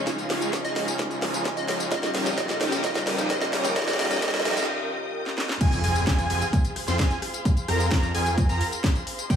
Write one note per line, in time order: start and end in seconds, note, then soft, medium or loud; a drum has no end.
0.00 0.06 C#3 medium
0.00 0.06 G#3 medium
0.00 0.07 C#4 medium
0.00 0.07 D#4 medium
0.00 0.08 F4 medium
0.00 1.88 G#4 medium
0.00 1.88 D#5 medium
0.00 1.88 F5 medium
0.00 1.88 C#6 medium
0.00 riser medium
0.06 0.28 C#2 loud
0.06 0.96 C#3 medium
0.06 0.22 F3 medium
0.06 0.97 G#3 medium
0.06 0.22 G#3 medium
0.06 0.22 C#4 medium
0.06 0.97 C#4 medium
0.06 0.22 D#4 medium
0.06 0.98 D#4 medium
0.06 0.98 F4 medium
0.06 0.22 G#4 loud
0.06 kick loud
0.06 snare medium
0.06 closed hi-hat medium
0.06 tambourine medium
0.18 closed hi-hat soft
0.18 tambourine soft
0.30 0.51 C#2 loud
0.30 0.50 F3 medium
0.30 0.50 G#3 medium
0.30 0.50 C#4 medium
0.30 0.50 D#4 medium
0.30 0.50 G#4 medium
0.30 snare medium
0.30 open hi-hat loud
0.42 closed hi-hat soft
0.42 tambourine medium
0.53 0.74 C#2 loud
0.53 0.73 F3 medium
0.53 0.73 G#3 medium
0.53 0.73 C#4 medium
0.53 0.73 D#4 medium
0.53 0.73 G#4 medium
0.53 kick loud
0.53 snare medium
0.53 closed hi-hat medium
0.53 tambourine medium
0.65 0.72 D#5 medium
0.65 closed hi-hat soft
0.65 tambourine soft
0.76 0.97 C#2 loud
0.76 0.91 F3 medium
0.76 0.91 G#3 medium
0.76 0.91 C#4 medium
0.76 0.91 D#4 medium
0.76 0.91 G#4 medium
0.76 0.84 D#5 medium
0.76 snare medium
0.76 open hi-hat loud
0.88 closed hi-hat soft
0.88 tambourine medium
0.98 1.20 C#2 loud
0.98 1.89 C#3 medium
0.98 1.14 F3 medium
0.98 1.89 G#3 medium
0.98 1.14 G#3 medium
0.98 1.90 C#4 medium
0.98 1.14 C#4 medium
0.98 1.14 D#4 medium
0.98 1.90 D#4 medium
0.98 1.90 F4 medium
0.98 1.14 G#4 medium
0.98 kick loud
0.98 snare medium
0.98 closed hi-hat medium
0.98 tambourine medium
1.11 closed hi-hat soft
1.11 tambourine soft
1.22 1.43 C#2 loud
1.22 1.43 F3 medium
1.22 1.43 G#3 medium
1.22 1.43 C#4 medium
1.22 1.43 D#4 medium
1.22 1.43 G#4 medium
1.22 snare medium
1.22 open hi-hat loud
1.34 closed hi-hat soft
1.34 tambourine medium
1.45 1.66 C#2 loud
1.45 1.66 F3 medium
1.45 1.66 G#3 medium
1.45 1.66 C#4 medium
1.45 1.66 D#4 medium
1.45 1.66 G#4 medium
1.45 kick loud
1.45 snare medium
1.45 closed hi-hat medium
1.45 tambourine medium
1.57 1.64 D#5 medium
1.57 closed hi-hat soft
1.57 tambourine soft
1.68 1.89 C#2 loud
1.68 1.83 F3 medium
1.68 1.83 G#3 medium
1.68 1.83 C#4 medium
1.68 1.83 D#4 medium
1.68 1.83 G#4 medium
1.68 1.76 D#5 medium
1.68 snare medium
1.68 open hi-hat loud
1.80 closed hi-hat soft
1.80 tambourine medium
1.90 2.12 D#2 loud
1.90 2.35 C#3 medium
1.90 2.06 F3 medium
1.90 2.35 G3 medium
1.90 2.06 G3 medium
1.90 2.06 C#4 medium
1.90 2.36 C#4 medium
1.90 2.06 D#4 medium
1.90 2.36 D#4 medium
1.90 2.36 F4 medium
1.90 2.06 G4 loud
1.90 5.57 A#4 medium
1.90 5.57 D#5 medium
1.90 1.99 D#5 medium
1.90 5.57 G5 medium
1.90 5.57 D#6 medium
1.90 kick loud
1.90 snare medium
1.90 closed hi-hat medium
1.90 tambourine medium
2.03 2.10 D#5 medium
2.03 snare medium
2.03 closed hi-hat soft
2.03 tambourine soft
2.15 2.35 D#2 loud
2.15 2.35 F3 medium
2.15 2.35 G3 medium
2.15 2.35 C#4 medium
2.15 2.35 D#4 medium
2.15 2.35 G4 medium
2.15 snare medium
2.15 open hi-hat loud
2.26 snare medium
2.26 closed hi-hat soft
2.26 tambourine medium
2.36 2.58 D#2 loud
2.36 2.81 C#3 medium
2.36 2.52 F3 loud
2.36 2.82 G3 medium
2.36 2.52 G3 medium
2.36 2.82 C#4 medium
2.36 2.52 C#4 medium
2.36 2.52 D#4 medium
2.36 2.82 D#4 medium
2.36 2.83 F4 medium
2.36 2.52 G4 loud
2.36 2.45 D#5 medium
2.36 kick loud
2.36 snare medium
2.36 closed hi-hat loud
2.36 tambourine medium
2.49 2.57 D#5 medium
2.49 snare medium
2.49 closed hi-hat soft
2.49 tambourine soft
2.61 2.82 D#2 loud
2.61 2.81 F3 medium
2.61 2.81 G3 medium
2.61 2.81 C#4 medium
2.61 2.81 D#4 medium
2.61 2.81 G4 medium
2.61 snare medium
2.61 open hi-hat loud
2.72 snare medium
2.72 closed hi-hat soft
2.72 tambourine medium
2.83 3.05 D#2 loud
2.83 3.27 C#3 medium
2.83 2.98 F3 medium
2.83 3.28 G3 medium
2.83 2.98 G3 medium
2.83 3.28 C#4 medium
2.83 2.98 C#4 medium
2.83 3.28 D#4 medium
2.83 3.29 F4 medium
2.83 2.98 G4 loud
2.83 2.91 D#5 medium
2.83 kick loud
2.83 snare loud
2.83 closed hi-hat medium
2.83 tambourine medium
2.95 3.03 D#5 medium
2.95 snare medium
2.95 closed hi-hat soft
2.95 tambourine soft
3.07 3.28 D#2 loud
3.07 3.27 F3 medium
3.07 3.27 G3 medium
3.07 3.27 C#4 medium
3.07 3.27 D#4 medium
3.07 3.27 G4 medium
3.07 snare medium
3.07 open hi-hat loud
3.18 snare medium
3.18 closed hi-hat soft
3.18 tambourine medium
3.29 3.51 D#2 medium
3.29 3.73 C#3 medium
3.29 3.74 G3 medium
3.29 3.45 G3 medium
3.29 3.74 C#4 medium
3.29 3.75 D#4 medium
3.29 3.75 F4 medium
3.29 3.45 G4 loud
3.29 3.37 D#5 medium
3.29 kick loud
3.29 snare loud
3.29 closed hi-hat medium
3.29 tambourine medium
3.41 3.49 D#5 medium
3.41 snare medium
3.41 closed hi-hat soft
3.41 tambourine soft
3.53 3.74 D#2 loud
3.53 3.73 F3 medium
3.53 3.73 G3 medium
3.53 3.73 C#4 medium
3.53 3.73 D#4 medium
3.53 3.73 G4 medium
3.53 snare loud
3.53 open hi-hat loud
3.65 snare medium
3.65 closed hi-hat soft
3.65 tambourine medium
3.75 3.97 D#2 loud
3.75 3.96 C#3 medium
3.75 3.97 G3 medium
3.75 3.91 G3 medium
3.75 3.97 C#4 medium
3.75 3.98 D#4 medium
3.75 3.98 F4 medium
3.75 3.91 G4 loud
3.75 3.83 D#5 medium
3.75 kick loud
3.75 snare loud
3.75 closed hi-hat loud
3.75 tambourine medium
3.82 snare medium
3.88 3.95 D#5 medium
3.88 snare medium
3.88 closed hi-hat soft
3.88 tambourine soft
3.93 snare medium
3.98 4.20 D#2 medium
3.98 4.20 C#3 medium
3.98 4.14 F3 medium
3.98 4.20 G3 medium
3.98 4.14 G3 medium
3.98 4.14 C#4 medium
3.98 4.20 C#4 medium
3.98 4.14 D#4 medium
3.98 4.21 D#4 medium
3.98 4.21 F4 medium
3.98 4.14 G4 loud
3.98 4.07 D#5 medium
3.98 snare loud
3.98 open hi-hat loud
4.05 snare medium
4.11 4.18 D#5 medium
4.11 snare medium
4.11 closed hi-hat soft
4.11 tambourine medium
4.16 snare medium
4.21 4.43 D#2 loud
4.21 4.43 C#3 medium
4.21 4.37 F3 loud
4.21 4.43 G3 medium
4.21 4.37 G3 medium
4.21 4.37 C#4 medium
4.21 4.44 C#4 medium
4.21 4.37 D#4 medium
4.21 4.44 D#4 medium
4.21 4.44 F4 medium
4.21 4.37 G4 loud
4.21 4.30 D#5 medium
4.21 kick loud
4.21 snare loud
4.21 closed hi-hat loud
4.21 tambourine medium
4.28 snare loud
4.34 4.41 D#5 medium
4.34 snare medium
4.34 closed hi-hat soft
4.34 tambourine soft
4.40 snare medium
4.44 4.66 D#2 loud
4.44 4.66 C#3 medium
4.44 4.60 F3 loud
4.44 4.66 G3 medium
4.44 4.60 G3 medium
4.44 4.67 C#4 medium
4.44 4.60 C#4 medium
4.44 4.60 D#4 medium
4.44 4.67 D#4 medium
4.44 4.67 F4 medium
4.44 4.60 G4 loud
4.44 4.53 D#5 medium
4.44 snare loud
4.44 open hi-hat loud
4.51 snare medium
4.57 4.64 D#5 medium
4.57 snare medium
4.57 closed hi-hat soft
4.57 tambourine medium
4.63 snare medium
5.26 snare medium
5.38 snare medium
5.49 snare medium
5.61 5.82 F2 loud
5.61 5.75 C4 loud
5.61 5.75 F4 medium
5.61 9.26 G#4 medium
5.61 5.75 G#4 loud
5.61 9.36 C5 medium
5.61 9.26 F5 medium
5.61 5.75 G#5 loud
5.61 9.36 C6 medium
5.61 kick loud
5.61 closed hi-hat medium
5.61 tambourine medium
5.61 crash loud
5.61 impact medium
5.72 closed hi-hat soft
5.72 tambourine soft
5.84 6.05 F2 loud
5.84 6.04 C4 medium
5.84 6.04 F4 medium
5.84 6.04 G#4 medium
5.84 6.04 G#5 medium
5.84 open hi-hat loud
5.95 closed hi-hat soft
5.95 tambourine medium
6.07 6.28 F2 loud
6.07 6.27 C4 medium
6.07 6.27 F4 medium
6.07 6.27 G#4 medium
6.07 6.27 G#5 medium
6.07 kick loud
6.07 snare loud
6.07 closed hi-hat medium
6.07 tambourine medium
6.18 closed hi-hat soft
6.18 tambourine soft
6.30 6.42 F2 loud
6.30 6.45 C4 medium
6.30 6.45 F4 medium
6.30 6.45 G#4 loud
6.30 6.45 G#5 loud
6.30 open hi-hat loud
6.42 closed hi-hat soft
6.42 tambourine medium
6.53 kick loud
6.53 closed hi-hat medium
6.53 tambourine medium
6.65 closed hi-hat soft
6.65 tambourine soft
6.76 cross-stick medium
6.76 open hi-hat loud
6.88 6.97 F2 loud
6.88 6.96 C4 medium
6.88 6.96 F4 medium
6.88 6.96 C5 medium
6.88 6.96 C6 medium
6.88 snare soft
6.88 closed hi-hat soft
6.88 tambourine medium
6.99 7.12 F2 loud
6.99 7.14 F4 medium
6.99 7.14 G#4 medium
6.99 7.14 G#5 medium
6.99 kick loud
6.99 snare loud
6.99 closed hi-hat medium
6.99 tambourine medium
7.11 closed hi-hat soft
7.11 tambourine soft
7.22 cross-stick medium
7.22 open hi-hat loud
7.34 closed hi-hat soft
7.34 tambourine medium
7.45 kick loud
7.45 closed hi-hat medium
7.45 tambourine medium
7.57 closed hi-hat soft
7.57 tambourine soft
7.68 7.89 F2 loud
7.68 7.89 C4 medium
7.68 7.89 F4 medium
7.68 7.89 A#4 medium
7.68 7.89 A#5 medium
7.68 cross-stick medium
7.68 open hi-hat loud
7.80 closed hi-hat soft
7.80 tambourine medium
7.91 8.12 F2 loud
7.91 8.06 F4 medium
7.91 8.06 A#5 loud
7.91 kick loud
7.91 snare loud
7.91 closed hi-hat medium
7.91 tambourine medium
8.03 closed hi-hat soft
8.03 tambourine soft
8.15 8.47 F2 loud
8.15 8.29 C4 loud
8.15 8.29 F4 medium
8.15 8.29 G#4 loud
8.15 8.29 G#5 loud
8.15 open hi-hat loud
8.26 cross-stick medium
8.26 closed hi-hat soft
8.26 tambourine medium
8.38 kick loud
8.38 closed hi-hat medium
8.38 tambourine medium
8.49 8.62 F2 loud
8.49 8.64 C4 medium
8.49 8.64 F4 medium
8.49 8.64 A#4 medium
8.49 8.64 A#5 loud
8.49 closed hi-hat soft
8.49 tambourine soft
8.61 open hi-hat loud
8.72 closed hi-hat soft
8.72 tambourine medium
8.84 kick loud
8.84 snare loud
8.84 closed hi-hat medium
8.84 tambourine medium
8.95 closed hi-hat soft
8.95 tambourine soft
9.07 open hi-hat loud
9.18 closed hi-hat soft
9.18 tambourine medium
9.30 9.36 C2 loud
9.30 9.36 C4 medium
9.30 9.36 D#4 medium
9.30 9.36 G4 loud
9.30 9.36 G4 medium
9.30 9.36 D#5 medium
9.30 9.36 G5 loud
9.30 kick loud
9.30 closed hi-hat medium
9.30 tambourine medium